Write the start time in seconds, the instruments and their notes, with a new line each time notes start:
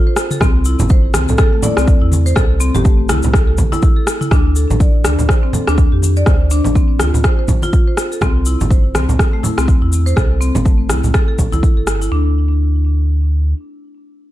0.07 marimba C5
0.16 cross-stick, cabasa
0.31 marimba A4, mid tom, cabasa
0.40 sub bass C2, marimba C4, kick, cross-stick, low conga, cabasa
0.65 marimba E4, cabasa
0.79 sub bass G1, high conga, low conga, cabasa
0.89 marimba C5, kick, cabasa
1.14 sub bass C2, marimba C4, cross-stick, high conga, cabasa
1.28 sub bass C2, marimba A4, low conga, cabasa
1.38 marimba A4, kick, cross-stick, high conga, cabasa
1.53 marimba A3
1.63 marimba E4 D5, high conga, low conga, cabasa
1.77 sub bass C2, marimba C4, cross-stick, cabasa
1.88 kick, cabasa
2.02 sub bass E2, marimba E4
2.12 mid tom, high conga, cabasa
2.26 marimba C5, cabasa
2.36 sub bass C2, marimba A4, kick, cross-stick, low conga, cabasa
2.60 marimba C4, cabasa
2.74 sub bass G1, marimba G4, high conga, low conga, cabasa
2.85 marimba A3, kick, cabasa
3.09 sub bass C2, marimba E4, cross-stick, mid tom, high conga, cabasa
3.23 sub bass C2, low conga, cabasa
3.33 marimba A4, kick, cross-stick, cabasa
3.48 marimba A4
3.58 sub bass A1, kick, mid tom, high conga, low conga, cabasa
3.72 marimba E4, high conga, cabasa
3.82 kick, cabasa
3.96 marimba A4
4.07 cross-stick, cabasa
4.21 marimba E4, mid tom, cabasa
4.31 sub bass D2, marimba D4, kick, cross-stick, low conga, cabasa
4.56 marimba A4, cabasa
4.70 sub bass A1, high conga, low conga, cabasa
4.80 marimba D5, kick, cabasa
5.04 sub bass D2, marimba D4, cross-stick, high conga, cabasa
5.19 sub bass D2, low conga, cabasa
5.29 marimba C5, kick, cross-stick, high conga, cabasa
5.43 marimba C4
5.53 marimba A4, high conga, low conga, cabasa
5.68 sub bass D2, marimba D4, cross-stick, cabasa
5.78 kick, cabasa
5.92 sub bass F2, marimba G4
6.02 high conga, cabasa
6.16 marimba D5, cabasa
6.26 sub bass D2, marimba C5, kick, cross-stick, low conga, cabasa
6.50 marimba D4, cabasa
6.64 sub bass A1, high conga, low conga, cabasa
6.75 marimba C4, kick, cabasa
7.00 sub bass D2, marimba F4, cross-stick, high conga, cabasa
7.14 sub bass D2, low conga, cabasa
7.24 marimba C5, kick, cross-stick, cabasa
7.39 marimba C5
7.48 kick, high conga, low conga, cabasa
7.62 marimba F4, high conga, cabasa
7.73 kick, cabasa
7.87 marimba C5
7.97 cross-stick, cabasa
8.12 marimba A4, cabasa
8.21 sub bass C2, marimba C4, kick, cross-stick, low conga, cabasa
8.45 marimba E4, cabasa
8.60 sub bass G1, high conga, low conga, cabasa
8.71 marimba C5, kick, cabasa
8.95 sub bass C2, marimba C4, cross-stick, high conga, cabasa
9.09 sub bass C2, low conga, cabasa
9.19 marimba A4, kick, cross-stick, high conga, cabasa
9.33 marimba A3
9.43 marimba E4, high conga, low conga, cabasa
9.58 sub bass C2, marimba C4, cross-stick, cabasa
9.68 kick, cabasa
9.82 sub bass E2, marimba E4
9.92 high conga, cabasa
10.06 marimba C5, cabasa
10.16 sub bass C2, marimba A4, kick, cross-stick, low conga, cabasa
10.41 marimba C4, cabasa
10.55 sub bass G1, high conga, low conga, cabasa
10.65 marimba A3, kick, cabasa
10.89 sub bass C2, marimba E4, cross-stick, high conga, cabasa
11.04 sub bass C2, low conga, cabasa
11.14 marimba A4, kick, cross-stick, cabasa
11.28 marimba A4
11.38 sub bass A1, kick, high conga, low conga, cabasa
11.52 sub bass C2, marimba E4, high conga, cabasa
11.63 kick, cabasa
11.77 sub bass G1, marimba A4
11.87 cross-stick, cabasa
12.02 marimba E4, cabasa
12.11 sub bass D2, marimba D4